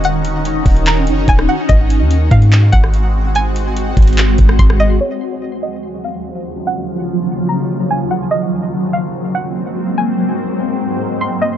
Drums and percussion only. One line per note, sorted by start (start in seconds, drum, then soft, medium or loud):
0.04 closed hi-hat medium
0.25 closed hi-hat medium
0.45 closed hi-hat medium
0.66 kick loud
0.66 closed hi-hat medium
0.66 open hi-hat medium
0.76 closed hi-hat soft
0.87 clap loud
0.87 closed hi-hat medium
1.07 closed hi-hat medium
1.28 kick medium
1.28 closed hi-hat medium
1.39 cross-stick loud
1.69 kick loud
1.69 closed hi-hat medium
1.90 closed hi-hat medium
2.11 closed hi-hat medium
2.31 kick medium
2.31 closed hi-hat medium
2.42 closed hi-hat soft
2.52 clap loud
2.52 closed hi-hat medium
2.73 kick medium
2.73 closed hi-hat medium
2.84 cross-stick medium
2.94 closed hi-hat medium
3.35 closed hi-hat medium
3.56 closed hi-hat medium
3.77 closed hi-hat medium
3.97 kick loud
3.97 closed hi-hat medium
4.02 closed hi-hat medium
4.08 closed hi-hat medium
4.13 closed hi-hat soft
4.18 clap loud
4.18 closed hi-hat medium
4.38 kick medium
4.38 closed hi-hat medium
4.49 cross-stick loud
4.59 kick medium
4.59 closed hi-hat medium
4.70 cross-stick medium